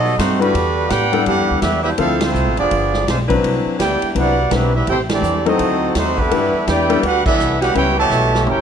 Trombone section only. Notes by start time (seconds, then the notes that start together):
Already playing: F#3 A3 D#4
0.19 C4
0.40 D3 G3 B3
0.90 B3 D4 G4
1.25 B3 D4 G4
1.61 G3 B3 E4
1.84 G3 B3 E4
1.98 A3 C4 F4
2.21 F3 A3 C4
2.57 F3 B3 D4
3.08 C4
3.80 B3 E4 G4
4.17 G3 B3 F#4
4.52 G3 B3 E4
4.75 G3 B3 E4
4.88 C4 E4 G4
5.11 E3 G3 D4
5.46 A3 C4 D#4
5.96 F#3 A3 C4
6.18 D3 E3 B3
6.66 D4 E4 G4
7.02 F#4
7.24 E3 B3 E4
7.60 F#4
7.74 B3 E4 G4
7.97 B2 E3 A3
8.46 C#4 E4 G4